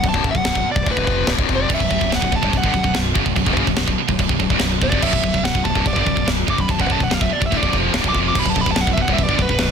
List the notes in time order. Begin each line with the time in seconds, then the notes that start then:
0.03 B0 B1 F#2, kick, china
0.09 A5
0.14 B0 B1 F#2, kick
0.24 F#1 F#2 C#3, kick
0.31 B1 F#2 F#5
0.35 B0, kick
0.44 B0 B1 F#2, snare, china
0.55 B0 B1 F#2, kick
0.65 muted fingered electric bass stroke, muted distorted electric guitar stroke
0.71 D5
0.76 B0 B1 F#2, kick
0.86 D1 D2 A2, kick, china
0.91 B4
0.97 B0 B1 F#2, kick
1.07 F1 F2 C3 F3, kick
1.27 C1 C2 G2, snare, china
1.38 B0 B1 F#2, kick
1.49 F1 F2 C3 F3, kick
1.56 D5
1.69 B0 B1 F#2, kick, crash, china
1.74 E5
1.80 B0 B1 F#2, kick
1.91 B0 B1 F#2, kick
1.98 B0 B1 F#2, kick
2.03 B1 F#2
2.12 B0 B1 F#2 F#5, snare, china
2.22 B0 B1 F#2, kick
2.32 B0 B1 F#2 A5, kick
2.43 C1 C2 G2, kick
2.53 B0 B1 F#2, kick, china
2.58 F#5
2.64 G1 G2 D3, kick
2.74 B0 B1 F#2, kick
2.83 B0 B1 F#2, kick
2.95 B0 B1 F#2, snare, china
3.14 F#1 F#2 C#3, kick
3.26 B0 B1 F#2, kick
3.36 B0 B1 F#2, kick, china
3.46 B0 B1 F#2, kick
3.56 F#1 F#2 C#3, kick
3.67 B0 B1 F#2, kick
3.77 B0 B1 F#2, snare, china
3.88 B0 B1 F#2, kick
3.98 muted overdriven electric guitar stroke, muted distorted electric guitar stroke, muted fingered electric bass stroke
4.09 B0 B1 F#2, kick
4.19 B0 B1 F#2, kick, china
4.29 B0 B1 F#2, kick
4.40 B0 B1 F#2, kick
4.50 C1 C2 G2, kick
4.60 B0 B1 F#2, snare, china
4.82 B0 B1 F#2 D5, kick
4.92 F1 F2 C3, kick
5.02 B0 B1 F#2 E5, kick, china, crash
5.13 B0 B1 F#2, kick
5.23 B0 B1 F#2, kick
5.34 B0 B1 F#2, kick
5.43 B0 B1 F#2 F#5, snare, china
5.55 B0 B1 F#2, kick
5.64 B0 B1 F#2 A5, kick
5.75 C1 C2 G2, kick
5.86 B0 B1 F#2 D5, kick, china
5.96 G1 G2 D3, kick
6.07 B0 B1 F#2, kick
6.17 B0 B1 F#2, kick
6.25 B0 B1 F#2, snare, china
6.30 B1 F#2
6.48 F#1 F#2 C#3 D6, kick
6.58 B0 B1 F#2 B5, kick
6.69 B0 B1 F#2 A5, kick, china
6.79 B0 B1 F#2 F#5, kick
6.89 F#1 F#2 C#3 A5, kick
7.00 B0 B1 F#2 F#5, kick
7.11 B0 B1 F#2 F5, snare, china
7.21 B0 B1 F#2 E5, kick
7.29 D5, muted overdriven electric guitar stroke, muted distorted electric guitar stroke, muted fingered electric bass stroke
7.41 B0 B1 F#2, kick
7.46 E5
7.52 D1 D2 A2, kick, china
7.57 D5
7.62 B0 B1 F#2, kick
7.72 F1 F2 C3 F3, kick
7.93 C1 C2 G2, snare, china
8.04 B0 B1 F#2, kick
8.08 D6
8.13 F1 F2 C3 F3, kick
8.28 D6
8.34 B0 B1 F#2 D3 B3 F#4 B4, kick, china, crash
8.40 B5
8.46 B0 B1 F#2 A5, kick
8.56 B0 B1 F#2, kick
8.61 B5
8.66 B0 B1 F#2, kick
8.71 A5
8.76 B0 B1 F#2, snare, china
8.81 F#5
8.87 B0 B1 F#2, kick
8.93 E5
8.97 B0 B1 F#2, kick
9.02 F#5
9.08 C1 C2 G2, kick
9.13 E5
9.18 B0 B1 F#2, kick, china
9.23 D5
9.28 G1 G2 D3, kick
9.38 B0 B1 F#2 B4, kick
9.48 B0 B1 F#2, kick
9.59 B0 B1 F#2, snare, china